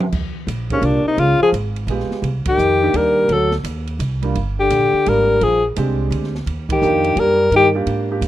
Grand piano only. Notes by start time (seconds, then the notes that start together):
0.71 A#3 D4 F4 G4
1.89 G#3 B3 F4 G4
2.82 A#3 D4 D#4 G4
4.22 G3 A#3 D4 F4
5.06 G3 A#3 D4 F4
5.76 G#3 C4 D4 G4
6.81 A#3 D4 F4 G4
7.74 A#3 D4 F4 G4
8.10 A#3 D4 F4 G4